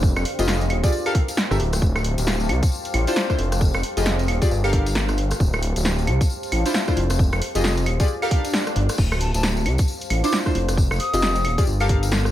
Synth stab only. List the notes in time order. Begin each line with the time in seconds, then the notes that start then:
0.39 F4 G4 G#4 D#5
0.83 F4 G4 G#4 D5
1.06 G4 A4 A#4 F5
1.51 G4 A4 A#4 E5
3.07 D4 E4 F4 C5
3.30 D4 E4 F4 C5
3.97 F4 G4 G#4 D#5
4.42 F4 G4 G#4 D5
4.64 G4 A4 A#4 F5
4.73 G4 A4 A#4 F5
6.66 D4 E4 F4 C5
6.88 D4 E4 F4 C5
7.55 F4 G4 G#4 D#5
8.00 F4 G4 G#4 D5
8.22 G4 A4 A#4 F5
8.31 G4 A4 A#4 F5
10.24 D4 E4 F4 C5
10.46 D4 E4 F4 C5
11.13 F4 G4 G#4 D#5
11.58 F4 G4 G#4 D5
11.80 G4 A4 A#4 F5
11.89 G4 A4 A#4 F5